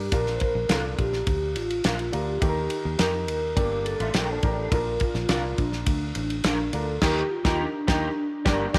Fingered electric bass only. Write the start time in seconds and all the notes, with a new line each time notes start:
0.12 A#1
0.55 A#1
0.69 C2
0.99 A#1
1.27 D2
1.56 A1
1.85 A#1
2.14 D2
2.42 D#2
2.85 D#2
3.00 F2
3.29 D#2
3.56 G1
4.00 A1
4.14 A#1
4.43 A1
4.72 A#1
5.15 A#1
5.30 C2
5.58 A#1
5.87 D2
6.16 A1
6.45 A#1
6.73 D2
7.02 D#2
7.45 D#2
7.88 D#2
8.46 G1
8.74 G1